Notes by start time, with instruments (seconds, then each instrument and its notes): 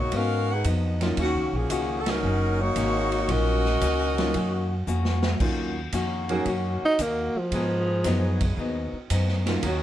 Already playing: upright bass A#2
0.00 saxophone section A#3 D#4 F#4 C#5
0.11 steel-string acoustic guitar G#2 F#3 B3 D#4, upright bass G#2, saxophone section C#4 F#4, kick, ride
0.16 saxophone section A#4 F5
0.52 saxophone section D#4 G#4 B4 F#5
0.64 upright bass F2, steel-string acoustic guitar G#2 F#3 B3 D#4, kick, hi-hat pedal, ride
1.00 grand piano F#3 A#3 C#4 D#4 F4, snare, ride
1.17 upright bass D#2, steel-string acoustic guitar D#3 A#3 C#4 F#4, saxophone section D#3 A#3 C#4 F#4, kick, ride
1.34 upright bass C#2
1.53 upright bass A#1, saxophone section F3 A#3 C#4 G#4
1.70 upright bass C#2, steel-string acoustic guitar D#3 A#3 C#4 F#4, kick, hi-hat pedal, ride
1.99 saxophone section A4
2.06 saxophone section F#3 C#4 D#4 A#4, snare, ride
2.23 upright bass F#1, steel-string acoustic guitar D#3 A#3 C#4 F#4
2.61 saxophone section A#3 D#4 F#4 C#5
2.75 upright bass G#1, steel-string acoustic guitar D#3 A#3 C#4 F#4, kick, hi-hat pedal, ride
3.12 ride
3.28 upright bass A#1, steel-string acoustic guitar D#3 A#3 C#4 F#4, grand piano F#3 A#3 C#4 D#4 F4, saxophone section C#4 F#4 A#4 D#5, kick, ride
3.65 snare
3.81 upright bass C#2, steel-string acoustic guitar D#3 A#3 C#4 F#4, kick, hi-hat pedal, ride
4.18 grand piano F#3 A#3 C#4 D#4 F4, snare, ride
4.34 upright bass F#2, steel-string acoustic guitar D#3 A#3 C#4 F#4, kick, ride
4.87 upright bass F2, steel-string acoustic guitar D#3 A#3 C#4 F#4, hi-hat pedal
5.05 snare
5.23 snare
5.40 upright bass D#2, steel-string acoustic guitar D#3 A#3 C#4 F#4, grand piano F#3 A#3 C#4 D#4 F4, kick, crash
5.92 upright bass F2, steel-string acoustic guitar D#3 A#3 C#4 F#4, kick, hi-hat pedal, ride
6.29 saxophone section D#3 A#3 C#4 F#4, grand piano F#3 A#3 C#4 D#4 G#4, ride
6.45 upright bass F#2, steel-string acoustic guitar D#3 A#3 C#4 F#4, kick, ride
6.82 tenor saxophone D#4, muted upright bass stroke
6.98 upright bass D#2, steel-string acoustic guitar D#3 A#3 C#4 F#4, tenor saxophone A#3, kick, hi-hat pedal, ride
7.34 tenor saxophone F3, muted upright bass stroke
7.52 upright bass G#2, steel-string acoustic guitar G#2 F#3 B3 D#4, saxophone section D#3 G#3 B3 G#4, kick, ride
8.04 upright bass F#2, steel-string acoustic guitar G#2 F#3 B3 D#4, kick, snare, hi-hat pedal, ride
8.41 kick, ride
8.57 upright bass D#2, steel-string acoustic guitar G#2 F#3 B3 D#4, kick
8.93 muted upright bass stroke
9.10 upright bass F#2, steel-string acoustic guitar G#2 F#3 B3 D#4, kick, hi-hat pedal, ride
9.28 snare
9.46 grand piano F#3 A#3 C#4 D#4 F4, snare, ride
9.63 upright bass D#2, steel-string acoustic guitar D#3 A#3 C#4 F#4, saxophone section D#3 A#3 C#4 F#4, kick, ride